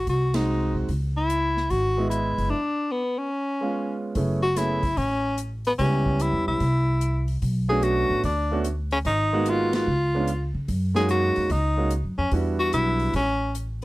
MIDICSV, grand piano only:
0, 0, Header, 1, 2, 480
1, 0, Start_track
1, 0, Key_signature, 4, "minor"
1, 0, Tempo, 408719
1, 1043, Time_signature, 4, 2, 24, 8
1, 4881, Key_signature, 3, "minor"
1, 16258, End_track
2, 0, Start_track
2, 0, Title_t, "Grand piano"
2, 0, Program_c, 0, 0
2, 399, Note_on_c, 0, 56, 61
2, 406, Note_on_c, 0, 60, 54
2, 411, Note_on_c, 0, 63, 59
2, 420, Note_on_c, 0, 66, 66
2, 1010, Note_off_c, 0, 56, 0
2, 1013, Note_off_c, 0, 60, 0
2, 1016, Note_off_c, 0, 63, 0
2, 1020, Note_off_c, 0, 66, 0
2, 2315, Note_on_c, 0, 56, 63
2, 2326, Note_on_c, 0, 59, 60
2, 2326, Note_on_c, 0, 75, 62
2, 2334, Note_on_c, 0, 64, 73
2, 2928, Note_off_c, 0, 56, 0
2, 2933, Note_off_c, 0, 59, 0
2, 2933, Note_off_c, 0, 75, 0
2, 2937, Note_off_c, 0, 64, 0
2, 4239, Note_on_c, 0, 56, 60
2, 4242, Note_on_c, 0, 59, 52
2, 4245, Note_on_c, 0, 61, 54
2, 4255, Note_on_c, 0, 65, 66
2, 4849, Note_off_c, 0, 56, 0
2, 4851, Note_off_c, 0, 59, 0
2, 4852, Note_off_c, 0, 61, 0
2, 4857, Note_off_c, 0, 65, 0
2, 4876, Note_on_c, 0, 57, 58
2, 4885, Note_on_c, 0, 59, 53
2, 4885, Note_on_c, 0, 61, 58
2, 4889, Note_on_c, 0, 64, 53
2, 4898, Note_on_c, 0, 68, 64
2, 5162, Note_off_c, 0, 57, 0
2, 5166, Note_off_c, 0, 61, 0
2, 5167, Note_off_c, 0, 59, 0
2, 5169, Note_off_c, 0, 64, 0
2, 5173, Note_off_c, 0, 68, 0
2, 5354, Note_on_c, 0, 57, 57
2, 5360, Note_on_c, 0, 59, 54
2, 5363, Note_on_c, 0, 61, 55
2, 5369, Note_on_c, 0, 64, 57
2, 5375, Note_on_c, 0, 68, 67
2, 5641, Note_off_c, 0, 57, 0
2, 5644, Note_off_c, 0, 59, 0
2, 5646, Note_off_c, 0, 61, 0
2, 5649, Note_off_c, 0, 64, 0
2, 5651, Note_off_c, 0, 68, 0
2, 6795, Note_on_c, 0, 55, 58
2, 6800, Note_on_c, 0, 59, 51
2, 6805, Note_on_c, 0, 61, 52
2, 6811, Note_on_c, 0, 64, 49
2, 6818, Note_on_c, 0, 67, 61
2, 7757, Note_off_c, 0, 55, 0
2, 7759, Note_off_c, 0, 59, 0
2, 7762, Note_off_c, 0, 61, 0
2, 7765, Note_off_c, 0, 64, 0
2, 7769, Note_off_c, 0, 67, 0
2, 9026, Note_on_c, 0, 57, 69
2, 9037, Note_on_c, 0, 59, 65
2, 9040, Note_on_c, 0, 61, 64
2, 9043, Note_on_c, 0, 62, 58
2, 9043, Note_on_c, 0, 66, 76
2, 9641, Note_off_c, 0, 57, 0
2, 9647, Note_off_c, 0, 59, 0
2, 9648, Note_off_c, 0, 61, 0
2, 9650, Note_off_c, 0, 62, 0
2, 9650, Note_off_c, 0, 66, 0
2, 9998, Note_on_c, 0, 57, 70
2, 10002, Note_on_c, 0, 59, 59
2, 10006, Note_on_c, 0, 61, 62
2, 10014, Note_on_c, 0, 62, 61
2, 10015, Note_on_c, 0, 66, 75
2, 10144, Note_off_c, 0, 57, 0
2, 10146, Note_off_c, 0, 59, 0
2, 10148, Note_off_c, 0, 61, 0
2, 10152, Note_off_c, 0, 62, 0
2, 10152, Note_off_c, 0, 66, 0
2, 10954, Note_on_c, 0, 56, 77
2, 10960, Note_on_c, 0, 58, 68
2, 10962, Note_on_c, 0, 59, 69
2, 10963, Note_on_c, 0, 63, 66
2, 10969, Note_on_c, 0, 66, 85
2, 11565, Note_off_c, 0, 56, 0
2, 11568, Note_off_c, 0, 58, 0
2, 11569, Note_off_c, 0, 59, 0
2, 11569, Note_off_c, 0, 63, 0
2, 11572, Note_off_c, 0, 66, 0
2, 11916, Note_on_c, 0, 59, 61
2, 11918, Note_on_c, 0, 56, 66
2, 11922, Note_on_c, 0, 61, 62
2, 11927, Note_on_c, 0, 62, 62
2, 11935, Note_on_c, 0, 65, 78
2, 12063, Note_off_c, 0, 56, 0
2, 12063, Note_off_c, 0, 59, 0
2, 12065, Note_off_c, 0, 61, 0
2, 12068, Note_off_c, 0, 62, 0
2, 12072, Note_off_c, 0, 65, 0
2, 12853, Note_on_c, 0, 56, 68
2, 12861, Note_on_c, 0, 58, 61
2, 12865, Note_on_c, 0, 61, 64
2, 12870, Note_on_c, 0, 63, 63
2, 12875, Note_on_c, 0, 66, 81
2, 13475, Note_off_c, 0, 56, 0
2, 13478, Note_off_c, 0, 58, 0
2, 13480, Note_off_c, 0, 61, 0
2, 13483, Note_off_c, 0, 63, 0
2, 13485, Note_off_c, 0, 66, 0
2, 13820, Note_on_c, 0, 58, 54
2, 13821, Note_on_c, 0, 56, 59
2, 13827, Note_on_c, 0, 61, 55
2, 13838, Note_on_c, 0, 63, 52
2, 13841, Note_on_c, 0, 66, 62
2, 13974, Note_off_c, 0, 58, 0
2, 13975, Note_off_c, 0, 56, 0
2, 13978, Note_off_c, 0, 61, 0
2, 13983, Note_off_c, 0, 63, 0
2, 13985, Note_off_c, 0, 66, 0
2, 14466, Note_on_c, 0, 55, 59
2, 14474, Note_on_c, 0, 59, 56
2, 14480, Note_on_c, 0, 62, 53
2, 14484, Note_on_c, 0, 64, 57
2, 14486, Note_on_c, 0, 66, 69
2, 15432, Note_off_c, 0, 55, 0
2, 15435, Note_off_c, 0, 59, 0
2, 15438, Note_off_c, 0, 62, 0
2, 15440, Note_off_c, 0, 64, 0
2, 15441, Note_off_c, 0, 66, 0
2, 16258, End_track
0, 0, End_of_file